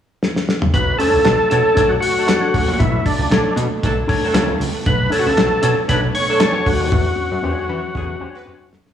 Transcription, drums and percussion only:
0.23 snare
0.36 snare
0.49 snare
0.62 mid tom
0.74 kick, closed hi-hat
1.00 open hi-hat
1.25 snare, clap, closed hi-hat
1.51 closed hi-hat
1.77 kick, closed hi-hat
2.02 open hi-hat
2.28 snare, clap, closed hi-hat
2.54 kick, open hi-hat
2.80 kick, closed hi-hat
3.06 kick, open hi-hat
3.32 snare, clap, closed hi-hat
3.57 closed hi-hat
3.83 kick, closed hi-hat
4.09 kick, open hi-hat
4.34 snare, clap, closed hi-hat
4.61 open hi-hat
4.86 kick, closed hi-hat
5.12 open hi-hat
5.38 snare, clap, closed hi-hat
5.63 closed hi-hat
5.89 kick, closed hi-hat
6.15 open hi-hat
6.40 snare, clap, closed hi-hat
6.66 kick, open hi-hat
6.92 kick
7.95 kick
8.73 snare
8.87 snare

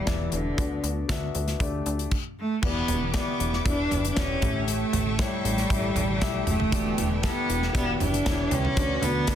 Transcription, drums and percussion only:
0.07 kick, snare, closed hi-hat
0.32 closed hi-hat
0.58 kick, closed hi-hat
0.84 closed hi-hat
1.09 kick, snare, closed hi-hat
1.35 closed hi-hat
1.47 snare, closed hi-hat
1.60 kick, closed hi-hat
1.86 closed hi-hat
1.99 closed hi-hat
2.11 kick, crash
2.63 kick, crash
2.88 closed hi-hat, floor tom
3.14 kick, snare, closed hi-hat
3.40 closed hi-hat
3.53 snare
3.66 kick, closed hi-hat
3.91 closed hi-hat, floor tom
4.05 closed hi-hat
4.16 kick, snare, closed hi-hat
4.42 kick, closed hi-hat, floor tom
4.68 closed hi-hat
4.93 closed hi-hat, floor tom
5.19 kick, snare, closed hi-hat
5.45 closed hi-hat
5.58 snare, closed hi-hat
5.70 kick, closed hi-hat
5.96 closed hi-hat, floor tom
6.21 kick, snare, closed hi-hat
6.47 closed hi-hat, floor tom
6.60 floor tom
6.72 kick, closed hi-hat
6.98 closed hi-hat, floor tom
7.23 kick, snare, closed hi-hat
7.50 closed hi-hat
7.62 snare
7.75 kick, closed hi-hat
8.00 closed hi-hat, floor tom
8.14 closed hi-hat
8.26 kick, snare, closed hi-hat
8.51 closed hi-hat, floor tom
8.65 floor tom
8.77 kick, closed hi-hat
9.03 closed hi-hat, floor tom
9.27 kick, snare, closed hi-hat

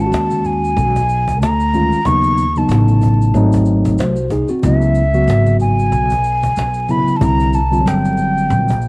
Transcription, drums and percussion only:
0.13 cajon slap, shaker
0.31 high conga, shaker
0.45 low conga, shaker
0.63 cajon slap, shaker
0.78 low conga, shaker
0.96 cajon bass, shaker
1.09 shaker
1.28 cajon bass, high conga, shaker
1.42 cajon slap, shaker
1.60 shaker
1.74 high conga, low conga, shaker
1.93 cajon slap, shaker
2.05 cajon bass, shaker
2.24 cajon slap, shaker
2.38 shaker
2.56 cajon slap, shaker
2.69 cajon slap, shaker
2.88 high conga, shaker
3.01 cajon bass, low conga, shaker
3.21 cajon slap, shaker
3.34 cajon slap, low conga, shaker
3.52 cajon bass, shaker
3.65 shaker
3.85 cajon bass, high conga, shaker
3.98 cajon slap, shaker
4.16 shaker
4.30 cajon bass, high conga, low conga, shaker
4.48 cajon slap, shaker
4.63 cajon bass, shaker
4.81 cajon slap, shaker
4.95 shaker
5.14 shaker
5.28 cajon slap, shaker
5.46 high conga, shaker
5.60 low conga, shaker
5.79 cajon slap, shaker
5.92 low conga, shaker
6.10 cajon bass, shaker
6.24 shaker
6.43 cajon bass, high conga, shaker
6.56 cajon slap, shaker
6.74 shaker
6.89 high conga, low conga, shaker
7.08 shaker
7.21 cajon bass, shaker
7.40 cajon slap, shaker
7.53 shaker
7.73 cajon slap, shaker
7.87 cajon slap, shaker
8.05 high conga, shaker
8.17 high conga, low conga, shaker
8.37 cajon slap, high conga, shaker
8.50 low conga, shaker
8.68 cajon bass, shaker
8.81 shaker

